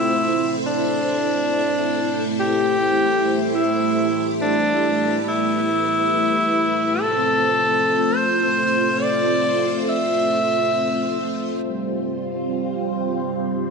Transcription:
Already playing: A3 C4 E4 C5
0.09 E4
0.66 D4
2.40 G4
3.55 E4
4.41 D4
4.71 B4
5.28 E4
7.01 A3 C4 F4 A4 C5
8.16 C5
9.03 D5
9.89 E5
11.63 G3 C4 F4 C5

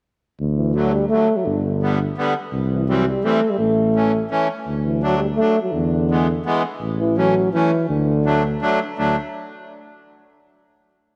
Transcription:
0.40 D2
0.57 E3
0.75 D3 F#3 A3
0.92 G3
1.09 D3 F#3 A3
1.36 F#3
1.45 G1 D3
1.82 D3 G3 B3
2.18 D3 G3 B3
2.52 C2
2.70 E3
2.87 E3 F#3 G3 C4
3.08 G3
3.24 E3 G3 A3 C4
3.50 G3
3.59 A1 A3
3.96 E3 A3 C#4
4.31 E3 A3 C#4
4.67 D2
4.85 E3
5.02 F#3 A3 D4
5.18 G3
5.36 A3
5.40 F#3 A3 D4
5.62 F#3
5.72 E2 D3
6.11 E3 G#3 B3
6.46 E3 G#3 B3
6.81 A1
7.00 E3
7.17 E3 F#3 A3 C#4
7.53 E3 A3 C#4
7.89 D2 D3
8.25 F#3 A3 D4
8.62 F#3 A3 D4
8.98 D2 F#3 A3 D4

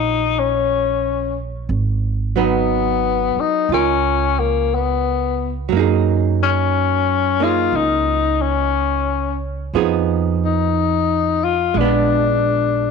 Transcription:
Already playing: A#1 F#3 D#4 F4
0.39 C#4
1.69 G#1
2.36 F#3 B3 D#4
3.36 muted upright bass stroke
3.40 D#4
3.69 C#2 F4
3.74 C#4 A#4
4.39 A#3
4.75 B3
5.69 F#2 F#3 A#3
5.77 D#4 G#4
6.43 C#4
7.40 A#3 D#4 F4 G#4
7.72 C#2
7.76 D#4
8.42 C#4
9.74 F2 F3 B3 D#4 G#4
10.45 D#4
11.44 F4
11.74 A#1 G#3 D4
11.81 B3
11.85 D4

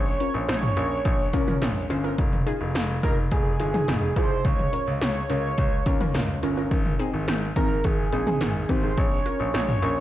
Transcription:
Already playing: A#1 C#5
0.20 C#4 F4 A#4, closed hi-hat
0.34 A#1
0.49 A#1 C#5, snare, closed hi-hat
0.63 mid tom
0.77 A#1 C#4 F4 A#4, closed hi-hat
1.05 A#1, kick, closed hi-hat
1.33 C2 C#4 F4 A#4, kick, closed hi-hat
1.48 C#4 F4 A#4, mid tom
1.62 A#1, snare, closed hi-hat, mid tom
1.90 G1 C#4 F4 C5, closed hi-hat
2.04 C#4 F4 A#4
2.18 F1, kick, closed hi-hat
2.33 mid tom
2.47 D#4 F4 G#4, closed hi-hat
2.61 F1
2.75 F1, snare, closed hi-hat
3.03 F1 D#4 F4 G#4 A#4, kick, closed hi-hat
3.31 F1 G#4, kick, closed hi-hat
3.60 G1 D#4 F4 G#4, closed hi-hat
3.74 D#4 F4 G#4, mid tom
3.88 F1, snare, closed hi-hat, mid tom
4.16 C2 D#4 F4 G#4 C5, kick, closed hi-hat
4.30 D#4 F4 G#4
4.45 C#2 C#5, kick, closed hi-hat
4.59 mid tom
4.73 C#4 F4 A#4, closed hi-hat
4.87 C#2
5.01 C#2 C#5, snare, closed hi-hat
5.30 C#2 C#4 F4 A#4, closed hi-hat
5.58 C#2, kick, closed hi-hat
5.86 D#2 C#4 F4 A#4, kick, closed hi-hat
6.01 C#4 F4 A#4, mid tom
6.14 C#2, snare, closed hi-hat, mid tom
6.43 G1 C#4 F4 A#4, closed hi-hat
6.57 C#4 F4 A#4
6.71 G#1, kick, closed hi-hat
6.86 mid tom
6.99 C4 D#4 G#4, closed hi-hat
7.14 G#1
7.28 G#1, snare, closed hi-hat
7.56 G#1 C4 D#4 G#4 A#4, kick, closed hi-hat
7.84 G#1 G#4, kick, closed hi-hat
8.12 A#1 C4 D#4 G#4, closed hi-hat
8.27 C4 D#4 G#4, mid tom
8.41 G#1, snare, closed hi-hat, mid tom
8.69 G#1 C4 D#4 G4 C5, kick, closed hi-hat
8.83 C4 D#4 G#4
8.98 A#1 C#5, kick, closed hi-hat
9.26 C#4 F4 A#4, closed hi-hat
9.40 A#1
9.54 A#1 C#5, snare, closed hi-hat
9.68 mid tom
9.82 A#1 C#4 F4 A#4, closed hi-hat

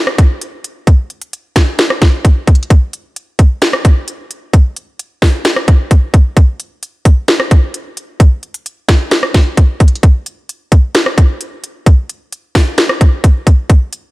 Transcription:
0.07 cross-stick
0.18 kick, closed hi-hat
0.41 closed hi-hat
0.64 closed hi-hat
0.87 kick, closed hi-hat
1.10 closed hi-hat
1.22 closed hi-hat
1.33 closed hi-hat
1.56 finger snap, kick, snare, closed hi-hat
1.79 finger snap, snare, closed hi-hat
1.90 cross-stick
2.02 kick, snare, closed hi-hat
2.25 kick, closed hi-hat
2.47 kick, closed hi-hat
2.55 closed hi-hat
2.63 closed hi-hat
2.70 kick, closed hi-hat
2.93 closed hi-hat
3.16 closed hi-hat
3.39 kick, closed hi-hat
3.62 finger snap, snare, closed hi-hat
3.73 cross-stick
3.85 kick, closed hi-hat
4.08 closed hi-hat
4.31 closed hi-hat
4.53 kick, closed hi-hat
4.76 closed hi-hat
4.99 closed hi-hat
5.22 finger snap, kick, snare, open hi-hat
5.45 finger snap, snare, closed hi-hat
5.56 cross-stick
5.68 kick, closed hi-hat
5.91 kick, closed hi-hat
6.14 kick, closed hi-hat
6.37 kick, closed hi-hat
6.60 closed hi-hat
6.83 closed hi-hat
7.05 kick, closed hi-hat
7.28 finger snap, snare, closed hi-hat
7.40 cross-stick
7.51 kick, closed hi-hat
7.74 closed hi-hat
7.97 closed hi-hat
8.20 kick, closed hi-hat
8.43 closed hi-hat
8.54 closed hi-hat
8.66 closed hi-hat
8.89 finger snap, kick, snare, closed hi-hat
9.11 finger snap, snare, closed hi-hat
9.23 cross-stick
9.34 kick, snare, closed hi-hat
9.57 kick, closed hi-hat
9.80 kick, closed hi-hat
9.88 closed hi-hat
9.95 closed hi-hat
10.03 kick, closed hi-hat
10.26 closed hi-hat
10.49 closed hi-hat
10.72 kick, closed hi-hat
10.95 finger snap, snare, closed hi-hat
11.06 cross-stick
11.18 kick, closed hi-hat
11.41 closed hi-hat
11.64 closed hi-hat
11.86 kick, closed hi-hat
12.09 closed hi-hat
12.32 closed hi-hat
12.55 finger snap, kick, snare, open hi-hat
12.78 finger snap, snare, closed hi-hat
12.89 cross-stick
13.01 kick, closed hi-hat
13.24 kick, closed hi-hat
13.47 kick, closed hi-hat
13.70 kick, closed hi-hat
13.93 closed hi-hat

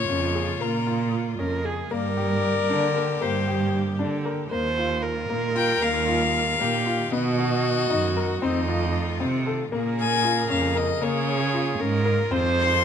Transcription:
Already playing: C#3 A#3 F4 C#5
0.09 F2 C#4
0.35 G#4
0.61 A#2 A#3 A#4
0.87 F4
1.39 F2 C#4 A#4
1.65 G#4
1.91 G2 D3 A#3 G4 A#4 D5
2.17 G4
2.70 D3 D4
2.96 A#4
3.21 G2 A#3 G4 C5
3.47 G4
3.99 D3 D4
4.25 A#4
4.51 D#2 D#3 G3 A#3 F4 C5
4.78 F4
5.03 A#4
5.30 A#2 A#3
5.55 F4 G5
5.82 D#2 A#3 F5
6.08 F4
6.60 A#2 A#3 G4
6.86 F4
7.12 B2 B3 F#4 D#5
7.38 F#4
7.90 F#2 D#4
8.17 A#4
8.42 F2 A3 C4 D#4 F4 D#5
8.68 F4
9.20 C3 C4
9.46 A4
9.72 A#2 C#3 A#3 G#4 A#4
10.00 G#5
10.24 F4
10.50 F2 C#4 F5
10.75 A#4 D#5
11.01 C#3 A#3 F4 G#4 C#5
11.54 F4
11.79 G#2 C#4 A#4
12.05 A#4
12.31 F2 D#3 G#3 C4 C5
12.60 C6

